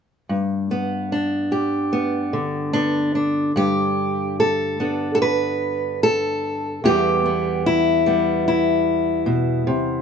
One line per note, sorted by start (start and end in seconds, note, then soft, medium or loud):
0.29 3.51 G2 medium
0.71 1.91 B3 soft
1.12 2.72 D4 medium
1.52 3.51 G4 medium
1.93 2.73 B3 medium
2.33 6.84 D3 medium
2.73 3.51 B3 medium
2.73 3.14 D4 medium
3.15 3.51 D4 medium
3.56 6.79 G2 medium
3.56 4.39 G4 medium
4.40 5.14 A4 medium
4.80 6.80 B3 soft
4.80 6.80 D4 soft
5.15 5.21 A4 medium
5.22 6.03 B4 medium
6.03 6.84 A4 loud
6.84 10.02 E2 medium
6.84 10.02 E3 soft
6.84 8.05 G3 soft
6.84 7.24 B3 soft
6.84 7.66 G4 medium
7.26 8.06 B3 soft
7.66 8.47 E4 medium
8.06 10.02 G3 soft
8.06 10.02 B3 soft
8.48 10.02 E4 medium
9.26 9.67 B2 medium
9.67 10.02 C3 medium